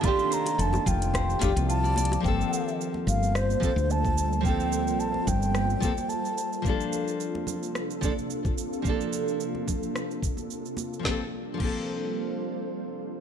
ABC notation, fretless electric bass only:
X:1
M:4/4
L:1/16
Q:"Swing 16ths" 1/4=109
K:Gm
V:1 name="Fretless electric bass" clef=bass
z4 F,,, z F,,,3 z F,,, C,,4 z | G,,, z4 z G,,,3 z2 D,,4- D,,- | D,,4 B,,, z G,,,3 z6 z | z16 |
z16 | z16 |]